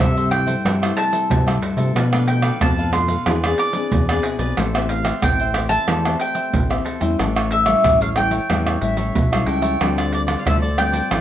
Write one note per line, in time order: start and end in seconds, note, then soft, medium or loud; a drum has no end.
0.00 0.62 G2 medium
0.00 0.55 C3 loud
0.00 0.19 G3 medium
0.00 0.19 A3 medium
0.00 0.15 E4 soft
0.00 0.20 E4 medium
0.00 0.15 A4 soft
0.00 0.16 C5 soft
0.00 0.31 E5 medium
0.00 0.15 E5 medium
0.00 pandeiro medium
0.00 tamborim medium
0.00 maracas medium
0.00 surdo loud
0.17 0.47 A4 medium
0.17 0.46 C5 medium
0.17 0.45 E5 medium
0.17 pandeiro soft
0.17 maracas soft
0.31 0.76 G3 medium
0.31 0.76 A3 medium
0.31 0.76 E4 medium
0.31 0.96 G5 medium
0.31 pandeiro medium
0.31 tamborim medium
0.31 maracas medium
0.46 0.63 A4 medium
0.46 0.63 C5 medium
0.46 0.63 E5 medium
0.46 pandeiro medium
0.46 maracas medium
0.65 0.93 G2 medium
0.65 1.27 C3 medium
0.65 0.80 E4 soft
0.65 0.80 A4 soft
0.65 0.81 C5 medium
0.65 0.81 E5 medium
0.65 pandeiro medium
0.65 tamborim medium
0.65 maracas medium
0.65 surdo medium
0.82 1.42 G3 medium
0.82 1.42 A3 medium
0.82 1.43 E4 medium
0.82 1.13 A4 medium
0.82 1.12 C5 medium
0.82 1.11 E5 medium
0.82 pandeiro soft
0.82 tamborim medium
0.82 maracas soft
0.97 1.59 A5 loud
0.97 pandeiro medium
0.97 maracas medium
1.12 1.45 A4 medium
1.12 1.45 C5 medium
1.12 1.45 E5 medium
1.12 pandeiro medium
1.12 maracas medium
1.30 1.93 G2 medium
1.30 1.58 C3 medium
1.30 pandeiro medium
1.30 maracas medium
1.30 surdo loud
1.47 1.75 G3 medium
1.47 1.75 A3 medium
1.47 1.75 E4 medium
1.47 1.61 A4 medium
1.47 1.61 C5 medium
1.47 1.61 E5 medium
1.47 pandeiro soft
1.47 tamborim medium
1.47 maracas soft
1.62 1.77 E4 soft
1.62 1.77 A4 medium
1.62 1.76 C5 soft
1.62 1.76 E5 soft
1.62 pandeiro medium
1.77 1.92 C3 loud
1.77 2.12 F3 medium
1.77 2.12 A3 medium
1.77 2.13 D4 medium
1.77 1.94 A4 medium
1.77 1.94 C5 medium
1.77 1.93 E5 medium
1.77 pandeiro medium
1.77 maracas medium
1.95 2.51 B2 loud
1.95 2.58 B2 medium
1.95 2.11 D4 medium
1.95 2.11 A4 medium
1.95 2.12 B4 medium
1.95 2.12 F5 medium
1.95 pandeiro medium
1.95 tamborim medium
1.95 maracas medium
1.95 surdo medium
2.13 2.57 F3 medium
2.13 2.57 A3 medium
2.13 2.57 D4 medium
2.13 2.27 A4 medium
2.13 2.27 B4 medium
2.13 2.27 F5 medium
2.13 pandeiro soft
2.13 tamborim medium
2.13 maracas soft
2.28 2.59 G5 medium
2.28 muted cavaquinho stroke soft
2.28 pandeiro medium
2.28 maracas medium
2.42 2.60 A4 medium
2.42 2.60 B4 medium
2.42 2.59 F5 medium
2.42 pandeiro medium
2.42 tamborim medium
2.42 maracas medium
2.61 3.17 F2 loud
2.61 3.24 B2 medium
2.61 2.81 F3 medium
2.61 2.81 A3 medium
2.61 2.76 D4 soft
2.61 2.81 D4 medium
2.61 2.77 A4 medium
2.61 2.77 B4 medium
2.61 2.77 F5 soft
2.61 2.92 A5 medium
2.61 pandeiro medium
2.61 tamborim medium
2.61 maracas medium
2.61 surdo loud
2.78 3.09 A4 medium
2.78 3.08 B4 medium
2.78 3.08 F5 medium
2.78 pandeiro soft
2.78 maracas soft
2.93 3.15 F3 medium
2.93 3.15 A3 soft
2.93 3.15 D4 medium
2.93 3.55 C6 loud
2.93 pandeiro medium
2.93 tamborim medium
3.08 3.25 A4 soft
3.08 3.25 B4 medium
3.08 3.25 F5 medium
3.08 pandeiro medium
3.08 maracas medium
3.26 3.55 E2 medium
3.26 3.89 E3 medium
3.26 3.37 C4 medium
3.26 3.37 D4 medium
3.26 3.42 E4 soft
3.26 3.42 G#4 medium
3.26 3.37 G#4 medium
3.26 3.42 B4 medium
3.26 3.43 D5 medium
3.26 pandeiro loud
3.26 tamborim loud
3.26 maracas medium
3.26 surdo medium
3.44 3.71 C4 medium
3.44 3.72 D4 medium
3.44 3.72 G#4 medium
3.44 3.74 G#4 medium
3.44 3.73 B4 medium
3.44 3.73 D5 medium
3.44 pandeiro soft
3.44 tamborim medium
3.44 maracas soft
3.58 4.21 D6 loud
3.58 pandeiro medium
3.73 4.03 C4 medium
3.73 4.03 D4 medium
3.73 4.07 G#4 soft
3.73 4.03 G#4 medium
3.73 4.07 B4 medium
3.73 4.06 D5 medium
3.73 pandeiro medium
3.73 maracas medium
3.92 4.20 E2 medium
3.92 4.55 B2 medium
3.92 pandeiro medium
3.92 maracas medium
3.92 surdo loud
4.09 4.37 C4 medium
4.09 4.37 D4 medium
4.09 4.24 G#4 medium
4.09 4.38 G#4 medium
4.09 4.24 B4 medium
4.09 4.24 D5 medium
4.09 pandeiro soft
4.09 tamborim medium
4.09 maracas soft
4.23 4.40 E4 medium
4.23 4.39 G#4 soft
4.23 4.39 B4 medium
4.23 4.38 D5 medium
4.23 pandeiro medium
4.39 4.54 B1 medium
4.39 4.68 C4 medium
4.39 4.68 G4 medium
4.39 4.56 G#4 medium
4.39 4.56 B4 medium
4.39 4.68 B4 medium
4.39 4.55 D5 medium
4.39 pandeiro medium
4.39 maracas medium
4.57 5.13 A1 loud
4.57 5.20 A3 medium
4.57 4.73 A4 soft
4.57 4.73 C5 medium
4.57 4.73 E5 medium
4.57 4.73 G5 medium
4.57 pandeiro medium
4.57 tamborim medium
4.57 maracas medium
4.57 surdo medium
4.74 5.19 C4 medium
4.74 5.19 G4 medium
4.74 5.19 B4 medium
4.74 4.89 C5 medium
4.74 4.89 E5 medium
4.74 4.89 G5 medium
4.74 pandeiro soft
4.74 tamborim medium
4.74 maracas soft
4.89 5.20 F5 medium
4.89 muted cavaquinho stroke soft
4.89 pandeiro medium
5.04 5.21 C5 medium
5.04 5.21 E5 medium
5.04 5.21 G5 medium
5.04 pandeiro medium
5.04 tamborim medium
5.04 maracas medium
5.22 5.78 A1 loud
5.22 5.86 E3 medium
5.22 5.43 C4 medium
5.22 5.43 G4 medium
5.22 5.38 A4 soft
5.22 5.44 B4 medium
5.22 5.38 C5 soft
5.22 5.39 E5 medium
5.22 5.69 G5 loud
5.22 5.39 G5 medium
5.22 pandeiro medium
5.22 tamborim medium
5.22 maracas medium
5.22 surdo loud
5.40 5.70 C5 medium
5.40 5.69 E5 medium
5.40 5.68 G5 medium
5.40 pandeiro soft
5.40 maracas soft
5.54 6.00 C4 soft
5.54 6.00 G4 medium
5.54 6.00 B4 medium
5.54 pandeiro medium
5.54 tamborim medium
5.69 5.87 C5 medium
5.69 5.86 E5 medium
5.69 5.86 G5 medium
5.69 6.16 A5 loud
5.69 pandeiro medium
5.69 maracas medium
5.88 6.16 E2 loud
5.88 6.51 A3 medium
5.88 6.03 A4 medium
5.88 6.03 C5 soft
5.88 6.04 E5 soft
5.88 6.04 G5 medium
5.88 pandeiro medium
5.88 tamborim medium
5.88 maracas medium
5.88 surdo medium
6.05 6.66 C4 medium
6.05 6.66 G4 medium
6.05 6.66 B4 medium
6.05 6.35 C5 soft
6.05 6.34 E5 medium
6.05 6.34 G5 medium
6.05 pandeiro soft
6.05 tamborim medium
6.05 maracas soft
6.20 6.83 G5 loud
6.20 pandeiro medium
6.20 maracas medium
6.35 6.68 C5 medium
6.35 6.68 E5 medium
6.35 6.68 G5 medium
6.35 pandeiro medium
6.35 maracas medium
6.54 6.82 A1 medium
6.54 7.16 E3 soft
6.54 pandeiro medium
6.54 maracas loud
6.54 surdo loud
6.70 6.98 C4 medium
6.70 6.98 G4 medium
6.70 6.99 B4 medium
6.70 6.84 C5 medium
6.70 6.85 E5 medium
6.70 6.85 G5 medium
6.70 pandeiro soft
6.70 tamborim medium
6.70 maracas soft
6.85 7.01 A4 medium
6.85 7.01 C5 medium
6.85 7.00 E5 medium
6.85 6.99 G5 medium
6.85 pandeiro medium
7.00 7.16 E2 loud
7.00 7.30 G3 medium
7.00 7.30 C#4 medium
7.00 7.30 E4 medium
7.00 7.17 C5 medium
7.00 7.17 E5 medium
7.00 7.17 G5 medium
7.00 pandeiro medium
7.00 maracas medium
7.19 7.75 A1 loud
7.19 7.82 A2 medium
7.19 7.34 G4 soft
7.19 7.34 A4 medium
7.19 7.34 C#5 soft
7.19 7.34 E5 medium
7.19 pandeiro medium
7.19 tamborim medium
7.19 maracas medium
7.19 surdo medium
7.36 7.49 A4 medium
7.36 7.50 C#5 medium
7.36 7.50 E5 medium
7.36 pandeiro soft
7.36 tamborim medium
7.36 maracas soft
7.51 7.98 E5 medium
7.51 pandeiro medium
7.65 8.12 G3 medium
7.65 8.12 C#4 medium
7.65 8.12 E4 medium
7.65 7.82 A4 medium
7.65 7.82 C#5 medium
7.65 7.82 E5 medium
7.65 pandeiro medium
7.65 tamborim medium
7.65 maracas medium
7.83 8.40 A1 medium
7.83 8.47 E3 medium
7.83 7.99 G4 soft
7.83 7.99 A4 soft
7.83 8.00 C#5 medium
7.83 8.00 E5 soft
7.83 pandeiro medium
7.83 tamborim medium
7.83 maracas medium
7.83 surdo loud
8.01 8.31 A4 medium
8.01 8.31 C#5 medium
8.01 8.30 E5 medium
8.01 8.07 F5 loud
8.01 pandeiro soft
8.01 maracas soft
8.16 8.36 G3 medium
8.16 8.37 C#4 medium
8.16 8.37 E4 medium
8.16 9.44 G5 loud
8.16 pandeiro medium
8.16 tamborim medium
8.31 8.48 A4 medium
8.31 8.48 C#5 medium
8.31 8.47 E5 medium
8.31 pandeiro medium
8.31 maracas medium
8.50 8.78 E2 loud
8.50 9.12 A2 medium
8.50 8.78 G3 medium
8.50 8.78 C#4 medium
8.50 8.78 E4 medium
8.50 8.65 G4 soft
8.50 8.65 A4 soft
8.50 8.66 C#5 soft
8.50 8.66 E5 soft
8.50 pandeiro medium
8.50 tamborim medium
8.50 maracas medium
8.50 surdo medium
8.67 8.97 A4 medium
8.67 8.96 C#5 medium
8.67 8.96 E5 medium
8.67 pandeiro soft
8.67 tamborim medium
8.67 maracas soft
8.81 9.12 A1 medium
8.81 9.13 G3 medium
8.81 9.13 C#4 medium
8.81 9.13 E4 medium
8.81 9.34 E5 medium
8.81 pandeiro medium
8.97 9.30 A4 medium
8.97 9.30 C#5 medium
8.97 9.29 E5 medium
8.97 pandeiro medium
8.97 maracas medium
9.15 9.45 B1 medium
9.15 9.78 E3 medium
9.15 pandeiro medium
9.15 maracas medium
9.15 surdo loud
9.32 9.77 G3 medium
9.32 9.77 C#4 medium
9.32 9.77 E4 medium
9.32 9.46 A4 medium
9.32 9.47 C#5 medium
9.32 9.47 E5 medium
9.32 9.48 F5 medium
9.32 pandeiro soft
9.32 tamborim medium
9.32 maracas soft
9.46 9.77 C#2 medium
9.46 9.63 G4 soft
9.46 9.62 A4 medium
9.46 9.62 C#5 medium
9.46 9.61 E5 medium
9.46 9.96 G5 loud
9.46 pandeiro medium
9.62 9.79 A4 medium
9.62 9.79 C#5 medium
9.62 9.78 E5 medium
9.62 pandeiro medium
9.62 maracas medium
9.80 10.36 D2 loud
9.80 10.43 D3 medium
9.80 10.41 G3 medium
9.80 10.41 C4 medium
9.80 9.96 F4 soft
9.80 10.41 F4 medium
9.80 9.96 A4 soft
9.80 9.96 C5 medium
9.80 9.96 D5 medium
9.80 pandeiro medium
9.80 tamborim medium
9.80 maracas medium
9.80 surdo medium
9.98 10.11 A4 medium
9.98 10.12 C5 medium
9.98 10.12 D5 medium
9.98 pandeiro soft
9.98 tamborim medium
9.98 maracas soft
10.13 10.21 D5 medium
10.13 muted cavaquinho stroke soft
10.13 pandeiro medium
10.27 10.44 A4 medium
10.27 10.44 C5 medium
10.27 10.43 D5 medium
10.27 pandeiro medium
10.27 tamborim medium
10.27 maracas medium
10.39 10.46 F5 medium
10.45 11.02 D2 loud
10.45 11.08 A2 soft
10.45 10.65 G3 medium
10.45 10.65 C4 medium
10.45 10.61 F4 soft
10.45 10.66 F4 medium
10.45 10.61 A4 soft
10.45 10.61 C5 soft
10.45 10.61 D5 medium
10.45 10.55 E5 medium
10.45 pandeiro medium
10.45 tamborim medium
10.45 maracas medium
10.45 surdo loud
10.62 10.92 A4 medium
10.62 10.92 C5 medium
10.62 10.91 D5 medium
10.62 pandeiro soft
10.62 maracas soft
10.78 11.21 G3 medium
10.78 11.21 C4 medium
10.78 11.21 F4 medium
10.78 11.21 G5 loud
10.78 pandeiro medium
10.78 tamborim medium
10.78 maracas medium
10.92 11.09 A4 medium
10.92 11.09 C5 medium
10.92 11.09 D5 medium
10.92 pandeiro medium
10.92 maracas medium
11.10 11.21 A1 loud
11.10 11.21 D3 medium
11.10 11.21 F4 medium
11.10 11.21 A4 soft
11.10 11.21 C5 medium
11.10 11.21 D5 medium
11.10 pandeiro medium
11.10 tamborim medium
11.10 maracas medium
11.10 surdo medium